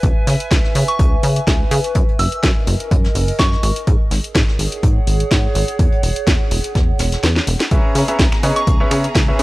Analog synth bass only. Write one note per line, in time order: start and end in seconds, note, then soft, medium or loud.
0.03 0.12 C#2 medium
0.27 0.36 C#3 medium
0.51 0.60 C#2 medium
0.75 0.84 C#3 medium
0.99 1.16 C#2 medium
1.23 1.40 C#3 medium
1.47 1.64 C#2 medium
1.71 1.80 C#3 loud
1.95 2.04 F#2 medium
2.19 2.28 F#1 medium
2.43 2.52 F#2 medium
2.67 2.76 F#1 medium
2.91 3.08 F#2 medium
3.15 3.32 F#1 medium
3.39 3.56 F#2 medium
3.63 3.72 G#1 medium
3.87 3.96 G#2 medium
4.11 4.20 G#1 medium
4.35 4.44 G#2 medium
4.59 4.68 G#1 medium
4.83 5.00 G#2 medium
5.07 5.24 G#1 medium
5.31 5.48 G#2 medium
5.55 5.64 G#1 loud
5.79 5.88 E2 medium
6.03 6.12 E1 medium
6.27 6.36 E2 loud
6.51 6.60 E1 medium
6.75 6.92 E2 medium
6.99 7.16 E1 medium
7.23 7.40 E2 medium
7.47 7.56 E1 medium
7.71 7.80 C#2 loud
7.95 8.04 C#3 medium
8.19 8.28 C#2 medium
8.43 8.52 C#3 medium
8.67 8.84 C#2 medium
8.91 9.08 C#3 medium
9.15 9.32 C#2 medium
9.39 9.43 C#3 medium